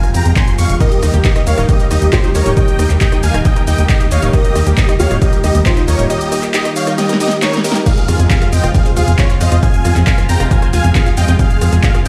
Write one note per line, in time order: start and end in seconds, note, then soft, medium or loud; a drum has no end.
0.00 0.77 C3 medium
0.00 0.77 F3 medium
0.00 0.77 G#3 medium
0.00 0.76 F4 medium
0.00 cross-stick medium
0.00 closed hi-hat medium
0.00 shaker soft
0.14 0.21 F2 medium
0.14 0.31 G5 medium
0.14 0.31 A#5 medium
0.14 0.31 A#5 loud
0.14 open hi-hat loud
0.14 shaker medium
0.25 0.32 F2 medium
0.25 closed hi-hat soft
0.25 shaker soft
0.36 0.53 G#5 medium
0.36 0.53 C6 medium
0.36 kick loud
0.36 clap loud
0.36 closed hi-hat medium
0.36 shaker soft
0.48 closed hi-hat soft
0.48 shaker soft
0.58 0.66 F2 medium
0.58 0.75 F5 medium
0.58 0.75 C#6 loud
0.58 0.75 C#6 medium
0.58 open hi-hat loud
0.58 shaker medium
0.69 0.77 F1 medium
0.69 closed hi-hat medium
0.69 shaker soft
0.80 7.82 D#3 medium
0.80 7.82 G3 medium
0.80 7.82 A#3 medium
0.80 0.88 D#4 medium
0.80 7.82 G4 loud
0.80 1.13 G4 medium
0.80 1.38 A#4 loud
0.80 1.13 D#5 loud
0.80 kick loud
0.80 closed hi-hat medium
0.80 shaker soft
0.92 closed hi-hat medium
0.92 shaker soft
1.03 1.10 D#2 loud
1.03 1.07 D#4 medium
1.03 cross-stick medium
1.03 open hi-hat loud
1.03 shaker medium
1.14 1.21 D#2 medium
1.14 1.24 G4 medium
1.14 closed hi-hat soft
1.14 shaker soft
1.24 1.29 D#4 loud
1.24 1.41 G4 medium
1.24 1.41 D#5 medium
1.24 kick loud
1.24 clap loud
1.24 closed hi-hat medium
1.24 shaker soft
1.36 1.40 D#4 loud
1.36 cross-stick medium
1.36 closed hi-hat medium
1.36 shaker soft
1.47 1.54 D#2 loud
1.47 2.04 A#4 medium
1.47 1.63 C#5 medium
1.47 1.63 F5 loud
1.47 1.63 F5 medium
1.47 open hi-hat medium
1.47 shaker medium
1.58 1.65 D#1 medium
1.58 1.65 D#4 loud
1.58 cross-stick medium
1.58 closed hi-hat medium
1.58 shaker soft
1.69 1.76 D#4 medium
1.69 1.85 G4 medium
1.69 1.85 D#5 medium
1.69 kick loud
1.69 closed hi-hat medium
1.69 shaker soft
1.80 1.84 A#4 medium
1.80 closed hi-hat medium
1.80 shaker soft
1.91 1.98 D#2 medium
1.91 1.95 D#4 loud
1.91 2.07 G4 medium
1.91 2.07 D#5 loud
1.91 2.07 D#5 medium
1.91 cross-stick medium
1.91 open hi-hat loud
1.91 shaker medium
2.02 2.09 D#2 medium
2.02 closed hi-hat medium
2.02 shaker soft
2.13 2.23 D#4 medium
2.13 2.29 D#4 medium
2.13 4.25 G4 medium
2.13 2.29 C5 medium
2.13 kick loud
2.13 clap loud
2.13 closed hi-hat medium
2.13 shaker soft
2.24 2.28 D#4 loud
2.24 closed hi-hat medium
2.24 shaker soft
2.35 2.42 D#2 medium
2.35 2.51 A#4 medium
2.35 2.51 C#5 loud
2.35 2.51 C#5 medium
2.35 2.46 D#5 medium
2.35 open hi-hat loud
2.35 shaker medium
2.46 2.53 D#1 medium
2.46 2.53 D#4 loud
2.46 closed hi-hat medium
2.46 shaker soft
2.57 2.65 D#4 medium
2.57 2.90 D#5 medium
2.57 2.89 G5 loud
2.57 2.90 G5 loud
2.57 kick loud
2.57 closed hi-hat medium
2.57 shaker soft
2.68 closed hi-hat medium
2.68 shaker soft
2.79 2.86 D#2 loud
2.79 2.84 D#4 medium
2.79 cross-stick medium
2.79 open hi-hat loud
2.79 shaker medium
2.90 2.97 D#2 medium
2.90 3.01 G4 medium
2.90 clap soft
2.90 closed hi-hat medium
2.90 shaker soft
3.01 3.06 D#4 loud
3.01 3.17 D#5 medium
3.01 3.17 G5 medium
3.01 kick loud
3.01 clap loud
3.01 closed hi-hat medium
3.01 shaker soft
3.12 3.17 D#4 loud
3.12 cross-stick medium
3.12 closed hi-hat medium
3.12 shaker soft
3.23 3.30 D#2 loud
3.23 3.40 F5 medium
3.23 3.39 G#5 loud
3.23 3.40 G#5 medium
3.23 open hi-hat medium
3.23 shaker medium
3.34 3.41 D#1 medium
3.34 3.42 D#4 loud
3.34 cross-stick medium
3.34 closed hi-hat medium
3.34 shaker soft
3.45 3.53 D#4 medium
3.45 3.61 D#5 medium
3.45 3.61 G5 medium
3.45 3.62 G5 medium
3.45 kick loud
3.45 closed hi-hat medium
3.45 shaker soft
3.56 3.61 A#4 medium
3.56 cross-stick medium
3.56 closed hi-hat medium
3.56 shaker soft
3.67 3.74 D#2 medium
3.67 3.72 D#4 loud
3.67 3.84 D#5 medium
3.67 3.84 G5 medium
3.67 3.84 G5 loud
3.67 open hi-hat loud
3.67 shaker medium
3.78 3.85 D#2 medium
3.78 closed hi-hat medium
3.78 shaker soft
3.89 3.99 D#4 medium
3.89 4.06 G4 medium
3.89 4.06 D#5 medium
3.89 kick loud
3.89 clap loud
3.89 closed hi-hat medium
3.89 shaker soft
4.00 4.05 D#4 loud
4.00 closed hi-hat soft
4.00 shaker soft
4.11 4.19 D#2 loud
4.11 4.28 C#5 medium
4.11 4.22 D#5 medium
4.11 4.28 F5 medium
4.11 4.28 F5 loud
4.11 open hi-hat medium
4.11 shaker medium
4.22 4.30 D#1 medium
4.22 4.30 D#4 loud
4.22 closed hi-hat medium
4.22 shaker soft
4.33 4.41 D#4 medium
4.33 4.66 G4 medium
4.33 4.91 A#4 loud
4.33 4.66 D#5 loud
4.33 kick loud
4.33 closed hi-hat medium
4.33 shaker soft
4.45 closed hi-hat medium
4.45 shaker soft
4.56 4.63 D#2 loud
4.56 4.60 D#4 medium
4.56 cross-stick medium
4.56 open hi-hat loud
4.56 shaker medium
4.67 4.74 D#2 medium
4.67 4.77 G4 medium
4.67 closed hi-hat medium
4.67 shaker soft
4.77 4.82 D#4 loud
4.77 4.94 G4 medium
4.77 4.94 D#5 medium
4.77 kick loud
4.77 clap loud
4.77 closed hi-hat medium
4.77 shaker soft
4.89 4.93 D#4 loud
4.89 cross-stick medium
4.89 closed hi-hat medium
4.89 shaker soft
5.00 5.07 D#2 loud
5.00 5.57 G4 medium
5.00 5.16 C#5 medium
5.00 5.16 F5 loud
5.00 5.16 F5 medium
5.00 open hi-hat medium
5.00 shaker medium
5.11 5.18 D#1 medium
5.11 5.18 D#4 loud
5.11 cross-stick medium
5.11 closed hi-hat medium
5.11 shaker soft
5.22 5.29 D#4 medium
5.22 5.38 G4 medium
5.22 5.38 D#5 medium
5.22 kick loud
5.22 closed hi-hat medium
5.22 shaker soft
5.33 5.37 A#4 medium
5.33 closed hi-hat medium
5.33 shaker soft
5.44 5.51 D#2 medium
5.44 5.48 D#4 loud
5.44 5.60 G4 medium
5.44 5.60 D#5 loud
5.44 5.60 D#5 medium
5.44 cross-stick medium
5.44 open hi-hat medium
5.44 shaker medium
5.55 5.62 D#2 medium
5.55 closed hi-hat medium
5.55 shaker soft
5.66 5.82 D#4 medium
5.66 5.76 D#4 medium
5.66 7.77 F4 loud
5.66 5.82 C5 medium
5.66 kick loud
5.66 clap loud
5.66 closed hi-hat medium
5.66 shaker soft
5.77 5.81 D#4 loud
5.77 closed hi-hat medium
5.77 shaker soft
5.88 5.95 D#2 loud
5.88 6.04 A#4 medium
5.88 6.04 C#5 medium
5.88 5.98 D#5 medium
5.88 open hi-hat medium
5.88 shaker medium
5.99 6.06 D#1 medium
5.99 6.06 D#4 loud
5.99 closed hi-hat medium
5.99 shaker soft
6.10 6.17 D#4 medium
6.10 6.42 G4 medium
6.10 6.42 D#5 loud
6.10 closed hi-hat medium
6.10 shaker soft
6.21 closed hi-hat medium
6.21 shaker soft
6.32 6.36 D#4 medium
6.32 cross-stick medium
6.32 open hi-hat loud
6.32 shaker medium
6.43 6.53 G4 medium
6.43 clap soft
6.43 closed hi-hat medium
6.43 shaker soft
6.54 6.58 D#4 loud
6.54 6.70 G4 medium
6.54 6.70 D#5 medium
6.54 clap loud
6.54 closed hi-hat medium
6.54 shaker soft
6.65 6.69 D#4 loud
6.65 cross-stick medium
6.65 closed hi-hat medium
6.65 shaker soft
6.76 6.92 C#5 medium
6.76 6.92 F5 loud
6.76 6.92 F5 medium
6.76 open hi-hat medium
6.76 shaker medium
6.87 6.95 D#4 loud
6.87 cross-stick medium
6.87 closed hi-hat medium
6.87 shaker soft
6.98 7.06 D#4 medium
6.98 7.14 G4 medium
6.98 7.14 D#5 medium
6.98 snare medium
6.98 closed hi-hat medium
6.98 shaker soft
7.09 7.14 A#4 medium
7.09 snare medium
7.09 closed hi-hat medium
7.09 shaker soft
7.20 7.25 D#4 loud
7.20 7.36 G4 medium
7.20 7.36 D#5 loud
7.20 7.36 D#5 medium
7.20 open hi-hat loud
7.20 shaker medium
7.28 snare medium
7.28 closed hi-hat medium
7.28 shaker soft
7.42 7.52 D#4 medium
7.42 7.59 A#4 medium
7.42 7.58 C#5 medium
7.42 snare medium
7.42 clap loud
7.42 closed hi-hat medium
7.42 shaker soft
7.53 7.58 D#4 loud
7.53 snare loud
7.53 closed hi-hat medium
7.53 shaker soft
7.64 7.81 G4 medium
7.64 7.81 A#4 medium
7.64 7.81 A#4 loud
7.64 7.75 D#5 medium
7.64 open hi-hat medium
7.64 shaker medium
7.72 7.83 D#4 loud
7.72 snare loud
7.72 closed hi-hat medium
7.72 shaker soft
7.86 12.08 C3 medium
7.86 12.08 F3 medium
7.86 12.08 G#3 medium
7.86 7.94 F4 medium
7.86 11.36 F4 medium
7.86 8.19 G#4 medium
7.86 8.19 F5 loud
7.86 kick loud
7.86 closed hi-hat medium
7.86 crash medium
7.86 shaker soft
7.97 closed hi-hat medium
7.97 shaker soft
8.08 8.15 F2 loud
8.08 8.13 F4 medium
8.08 cross-stick medium
8.08 open hi-hat loud
8.08 shaker medium
8.19 8.26 F2 medium
8.19 8.30 G#4 medium
8.19 closed hi-hat medium
8.19 shaker soft
8.30 8.35 F4 loud
8.30 8.47 G#4 medium
8.30 8.47 F5 medium
8.30 kick loud
8.30 clap loud
8.30 closed hi-hat medium
8.30 shaker soft
8.41 8.46 F4 loud
8.41 cross-stick medium
8.41 closed hi-hat medium
8.41 shaker soft
8.52 8.60 F2 medium
8.52 8.69 D#5 medium
8.52 8.69 G5 medium
8.52 8.69 G5 loud
8.52 open hi-hat medium
8.52 shaker medium
8.63 8.71 F1 medium
8.63 8.71 F4 loud
8.63 cross-stick medium
8.63 closed hi-hat medium
8.63 shaker soft
8.74 8.82 F4 medium
8.74 8.91 G#4 medium
8.74 8.91 F5 medium
8.74 kick loud
8.74 closed hi-hat medium
8.74 shaker soft
8.86 8.90 C5 medium
8.86 closed hi-hat medium
8.86 shaker soft
8.96 9.04 D#2 medium
8.96 9.01 F4 loud
8.96 9.13 G#4 medium
8.96 9.13 F5 medium
8.96 cross-stick medium
8.96 open hi-hat loud
8.96 shaker medium
9.08 9.15 F2 medium
9.08 closed hi-hat medium
9.08 shaker soft
9.18 9.35 F4 medium
9.18 9.28 F4 medium
9.18 9.35 C#5 medium
9.18 9.35 C#5 loud
9.18 kick loud
9.18 clap loud
9.18 closed hi-hat medium
9.18 shaker soft
9.30 9.34 F4 loud
9.30 closed hi-hat medium
9.30 shaker soft
9.41 9.48 F2 loud
9.41 9.57 C5 medium
9.41 9.57 D#5 medium
9.41 9.51 F5 medium
9.41 open hi-hat loud
9.41 shaker medium
9.52 9.59 F2 medium
9.52 9.59 F4 loud
9.52 closed hi-hat medium
9.52 shaker soft
9.63 9.70 F4 medium
9.63 9.95 F5 medium
9.63 9.95 G#5 loud
9.63 kick loud
9.63 closed hi-hat medium
9.63 shaker soft
9.74 closed hi-hat medium
9.74 shaker soft
9.85 9.92 F2 loud
9.85 9.89 F4 medium
9.85 cross-stick medium
9.85 open hi-hat loud
9.85 shaker medium
9.96 10.03 F2 medium
9.96 10.06 G#4 medium
9.96 clap soft
9.96 closed hi-hat medium
9.96 shaker soft
10.07 10.11 F4 loud
10.07 10.23 F5 medium
10.07 10.23 G#5 medium
10.07 kick loud
10.07 clap loud
10.07 closed hi-hat medium
10.07 shaker soft
10.18 10.22 F4 loud
10.18 cross-stick medium
10.18 closed hi-hat medium
10.18 shaker soft
10.29 10.36 F2 loud
10.29 10.45 G5 medium
10.29 10.45 A#5 medium
10.29 10.45 A#5 loud
10.29 open hi-hat loud
10.29 shaker medium
10.40 10.47 F1 medium
10.40 10.47 F4 loud
10.40 cross-stick medium
10.40 closed hi-hat medium
10.40 shaker soft
10.51 10.59 F4 medium
10.51 10.67 F5 medium
10.51 10.67 G#5 medium
10.51 kick loud
10.51 closed hi-hat medium
10.51 shaker soft
10.62 10.67 C5 medium
10.62 cross-stick medium
10.62 closed hi-hat medium
10.62 shaker soft
10.73 10.80 D#2 medium
10.73 10.78 F4 loud
10.73 10.90 F5 medium
10.73 10.89 G#5 medium
10.73 10.89 G#5 loud
10.73 open hi-hat loud
10.73 shaker medium
10.84 10.91 F2 medium
10.84 closed hi-hat medium
10.84 shaker soft
10.95 11.05 F4 medium
10.95 11.12 G#4 medium
10.95 11.12 F5 medium
10.95 kick loud
10.95 clap loud
10.95 closed hi-hat medium
10.95 shaker soft
11.06 11.11 F4 loud
11.06 closed hi-hat medium
11.06 shaker soft
11.17 11.24 F2 medium
11.17 11.34 D#5 medium
11.17 11.28 F5 medium
11.17 11.34 G5 loud
11.17 open hi-hat loud
11.17 shaker medium
11.28 11.35 F2 medium
11.28 11.36 F4 loud
11.28 closed hi-hat medium
11.28 shaker soft
11.39 12.08 F4 medium
11.39 11.47 F4 medium
11.39 11.72 G#4 medium
11.39 11.72 F5 loud
11.39 kick loud
11.39 closed hi-hat medium
11.39 shaker soft
11.50 closed hi-hat medium
11.50 shaker soft
11.61 11.68 F2 loud
11.61 11.66 F4 medium
11.61 cross-stick medium
11.61 open hi-hat loud
11.61 shaker medium
11.72 11.79 F2 medium
11.72 11.83 G#4 medium
11.72 closed hi-hat medium
11.72 shaker soft
11.83 11.88 F4 loud
11.83 12.00 G#4 medium
11.83 12.00 F5 medium
11.83 kick loud
11.83 clap loud
11.83 closed hi-hat medium
11.83 shaker soft
11.95 11.99 F4 loud
11.95 cross-stick medium
11.95 closed hi-hat medium
11.95 shaker soft